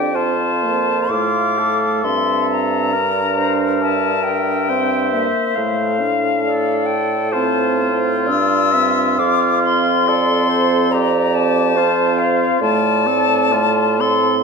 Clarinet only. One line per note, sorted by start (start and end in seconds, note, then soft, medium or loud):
0.00 0.16 D5 soft
0.15 1.13 C5 soft
1.12 2.04 F5 soft
2.04 2.93 E5 soft
2.95 3.40 D5 soft
3.38 3.84 C5 soft
3.82 6.18 E5 medium
6.44 7.29 D5 soft
7.32 8.29 C5 medium
8.27 8.74 D5 medium
8.73 9.17 E5 medium
9.18 10.08 F5 medium
10.07 10.50 D5 soft
10.48 10.93 C5 soft
10.91 11.77 D5 medium
11.76 12.60 C5 medium
12.61 14.16 D5 medium